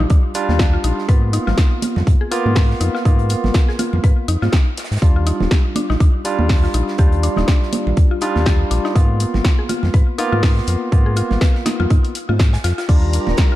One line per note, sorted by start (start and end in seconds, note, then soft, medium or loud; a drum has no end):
0.00 0.32 G3 medium
0.00 0.32 D4 medium
0.00 0.32 F4 medium
0.00 low conga loud
0.10 0.19 D#2 medium
0.10 0.19 D4 medium
0.10 kick loud
0.10 closed hi-hat medium
0.34 1.06 G3 medium
0.34 1.06 D4 medium
0.34 1.06 F4 loud
0.34 closed hi-hat medium
0.34 open hi-hat loud
0.49 0.78 D#2 loud
0.49 snare medium
0.49 high conga medium
0.59 kick loud
0.59 snare loud
0.59 closed hi-hat medium
0.73 0.80 F4 medium
0.84 0.93 A#1 medium
0.84 0.93 D#4 medium
0.84 closed hi-hat medium
0.84 open hi-hat loud
0.98 snare soft
1.08 1.39 G#2 loud
1.08 2.29 A#3 medium
1.08 2.29 B3 medium
1.08 2.29 F4 medium
1.08 1.18 B4 loud
1.08 kick loud
1.08 closed hi-hat medium
1.33 1.47 D#4 medium
1.33 closed hi-hat medium
1.33 open hi-hat loud
1.47 1.54 G#1 medium
1.47 1.57 F4 loud
1.47 snare soft
1.47 high conga medium
1.47 low conga loud
1.57 1.67 D#4 medium
1.57 kick loud
1.57 snare loud
1.57 closed hi-hat medium
1.57 open hi-hat medium
1.82 closed hi-hat medium
1.82 open hi-hat loud
1.82 high conga medium
1.96 2.03 F2 medium
1.96 snare soft
1.96 low conga loud
2.07 2.16 G#2 medium
2.07 kick loud
2.07 closed hi-hat medium
2.21 2.28 G#4 medium
2.31 3.03 A#3 medium
2.31 3.03 B3 medium
2.31 2.41 F4 medium
2.31 3.03 F4 loud
2.31 closed hi-hat medium
2.31 open hi-hat loud
2.46 2.74 G#2 medium
2.46 high conga medium
2.56 2.65 B4 loud
2.56 kick loud
2.56 snare loud
2.56 open hi-hat medium
2.71 snare soft
2.80 2.90 F2 medium
2.80 2.94 D#4 medium
2.80 closed hi-hat medium
2.80 open hi-hat loud
2.95 3.05 F4 loud
2.95 snare medium
3.05 3.36 G#2 medium
3.05 4.26 A#3 medium
3.05 4.26 B3 medium
3.05 3.14 D#4 medium
3.05 4.26 F4 medium
3.05 kick loud
3.05 closed hi-hat medium
3.19 closed hi-hat soft
3.29 closed hi-hat medium
3.29 open hi-hat loud
3.44 3.51 G#1 medium
3.44 snare medium
3.44 high conga medium
3.44 low conga medium
3.54 kick loud
3.54 snare loud
3.54 closed hi-hat medium
3.69 3.75 G#4 medium
3.69 snare soft
3.79 3.88 F4 medium
3.79 closed hi-hat medium
3.79 open hi-hat loud
3.79 high conga medium
3.93 4.00 F2 medium
3.93 low conga medium
4.04 4.12 G#2 medium
4.04 4.13 B4 loud
4.04 kick loud
4.04 closed hi-hat medium
4.28 4.37 F2 medium
4.28 4.42 D#4 medium
4.28 closed hi-hat medium
4.28 open hi-hat loud
4.42 4.49 G#2 loud
4.42 4.52 F4 loud
4.42 snare soft
4.42 high conga medium
4.52 4.62 D#4 medium
4.52 kick loud
4.52 snare loud
4.52 closed hi-hat medium
4.78 snare medium
4.78 closed hi-hat medium
4.78 open hi-hat loud
4.84 snare medium
4.84 closed hi-hat medium
4.91 4.98 G#2 medium
4.91 snare medium
4.91 closed hi-hat medium
4.96 snare medium
4.96 closed hi-hat medium
5.02 5.32 D#2 loud
5.02 6.22 G3 medium
5.02 6.22 D4 medium
5.02 6.23 F4 medium
5.02 kick loud
5.02 closed hi-hat medium
5.16 5.23 F4 medium
5.26 5.36 D#4 medium
5.26 closed hi-hat medium
5.26 open hi-hat loud
5.40 5.47 D#1 medium
5.40 snare soft
5.40 high conga medium
5.40 low conga medium
5.51 5.60 G4 loud
5.51 kick loud
5.51 snare loud
5.51 closed hi-hat medium
5.51 open hi-hat medium
5.76 5.89 D4 medium
5.76 closed hi-hat medium
5.76 open hi-hat loud
5.76 high conga medium
5.90 5.96 A#1 medium
5.90 6.00 D#4 loud
5.90 snare soft
5.90 low conga medium
6.00 6.09 D#2 medium
6.00 6.09 D4 medium
6.00 kick loud
6.00 closed hi-hat medium
6.25 6.96 G3 medium
6.25 6.96 D4 medium
6.25 6.96 F4 loud
6.25 closed hi-hat medium
6.25 open hi-hat loud
6.39 6.68 D#2 loud
6.39 high conga medium
6.49 kick loud
6.49 snare loud
6.49 open hi-hat medium
6.63 6.70 F4 medium
6.63 snare soft
6.74 6.83 A#1 medium
6.74 6.83 D#4 medium
6.74 closed hi-hat medium
6.74 open hi-hat loud
6.88 snare medium
6.98 7.29 D#2 loud
6.98 8.19 G3 medium
6.98 8.19 D4 medium
6.98 8.19 F4 medium
6.98 7.08 G4 loud
6.98 kick loud
6.98 closed hi-hat medium
7.12 closed hi-hat soft
7.23 7.37 D4 medium
7.23 closed hi-hat medium
7.23 open hi-hat loud
7.36 7.44 D#1 medium
7.36 7.47 D#4 medium
7.36 snare medium
7.36 high conga medium
7.36 low conga medium
7.48 7.57 D4 medium
7.48 kick loud
7.48 snare loud
7.48 closed hi-hat medium
7.62 snare soft
7.73 closed hi-hat medium
7.73 open hi-hat loud
7.73 high conga medium
7.87 7.93 A#1 medium
7.87 low conga medium
7.97 8.06 D#2 medium
7.97 kick loud
7.97 closed hi-hat medium
8.11 8.18 F4 medium
8.21 8.93 G3 medium
8.21 8.93 D4 medium
8.21 8.31 D#4 medium
8.21 8.93 F4 loud
8.21 closed hi-hat medium
8.21 open hi-hat loud
8.36 8.65 D#2 medium
8.36 snare medium
8.36 high conga medium
8.46 8.55 G4 loud
8.46 kick loud
8.46 snare loud
8.46 closed hi-hat medium
8.71 8.80 A#1 medium
8.71 8.84 D4 medium
8.71 closed hi-hat medium
8.71 open hi-hat medium
8.84 8.94 D#4 loud
8.84 snare soft
8.95 9.26 G#2 loud
8.95 10.16 A#3 medium
8.95 10.16 B3 medium
8.95 9.05 D#4 medium
8.95 10.16 F4 medium
8.95 kick loud
8.95 closed hi-hat medium
9.20 closed hi-hat medium
9.20 open hi-hat loud
9.34 9.41 G#1 medium
9.34 snare medium
9.34 high conga medium
9.34 low conga medium
9.44 kick loud
9.44 snare loud
9.44 closed hi-hat medium
9.44 open hi-hat medium
9.59 9.65 G#4 medium
9.69 9.78 F4 medium
9.69 closed hi-hat medium
9.69 open hi-hat medium
9.69 high conga medium
9.83 9.90 F2 medium
9.83 snare soft
9.83 low conga medium
9.94 10.03 G#2 medium
9.94 10.03 B4 loud
9.94 kick loud
9.94 closed hi-hat medium
10.18 10.89 A#3 medium
10.18 10.90 B3 medium
10.18 10.32 D#4 medium
10.18 10.90 F4 loud
10.18 closed hi-hat medium
10.18 open hi-hat loud
10.32 10.61 G#2 loud
10.32 10.42 F4 loud
10.32 high conga medium
10.43 10.52 D#4 medium
10.43 kick loud
10.43 snare loud
10.43 open hi-hat medium
10.57 snare soft
10.67 10.76 F2 medium
10.67 closed hi-hat medium
10.67 open hi-hat loud
10.92 11.22 G#2 loud
10.92 12.12 A#3 medium
10.92 12.13 B3 medium
10.92 12.13 F4 medium
10.92 kick loud
10.92 closed hi-hat medium
11.06 11.13 G#4 medium
11.16 11.26 F4 medium
11.16 closed hi-hat medium
11.16 open hi-hat loud
11.31 11.37 G#1 medium
11.31 snare soft
11.31 high conga medium
11.31 low conga medium
11.41 11.50 B4 loud
11.41 kick loud
11.41 snare loud
11.41 closed hi-hat medium
11.55 snare soft
11.66 11.79 D#4 medium
11.66 snare medium
11.66 closed hi-hat medium
11.66 open hi-hat loud
11.66 high conga medium
11.80 11.87 F2 medium
11.80 11.90 F4 loud
11.80 low conga medium
11.90 11.99 G#2 medium
11.90 12.00 D#4 medium
11.90 kick loud
11.90 closed hi-hat medium
11.90 high conga medium
12.05 open hi-hat medium
12.15 closed hi-hat medium
12.15 open hi-hat loud
12.29 12.58 G#2 medium
12.29 12.33 F4 medium
12.29 high conga medium
12.39 kick loud
12.39 snare loud
12.39 closed hi-hat medium
12.53 12.58 G#5 medium
12.53 snare medium
12.53 closed hi-hat medium
12.64 12.73 F2 medium
12.64 12.73 F4 loud
12.64 snare loud
12.64 closed hi-hat medium
12.64 open hi-hat loud
12.78 12.85 F4 medium
12.78 snare medium
12.78 closed hi-hat medium
12.89 13.19 D#2 loud
12.89 13.56 G3 medium
12.89 12.98 D4 medium
12.89 13.56 D4 medium
12.89 13.56 F4 medium
12.89 13.56 G4 medium
12.89 13.56 A#4 medium
12.89 13.56 D5 medium
12.89 13.56 A#5 medium
12.89 kick loud
12.89 closed hi-hat medium
12.89 crash medium
13.13 closed hi-hat medium
13.13 open hi-hat loud
13.27 13.34 D#1 medium
13.27 snare soft
13.27 high conga medium
13.27 low conga medium
13.37 kick loud
13.37 snare loud
13.37 closed hi-hat medium
13.37 open hi-hat medium
13.52 13.56 F4 medium